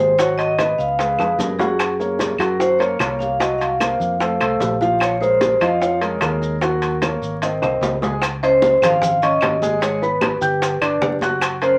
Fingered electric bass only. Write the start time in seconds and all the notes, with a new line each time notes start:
Already playing: G#1
0.79 C#2
1.18 F2
1.38 F#2
2.39 F#2
2.99 C2
4.00 F2
4.41 C2
4.60 A#1
5.61 F2
6.21 D#2
7.22 G#1
7.62 C2
7.81 C#2
8.82 G#1
9.42 G#1
10.41 G1
10.81 G1
11.01 F#1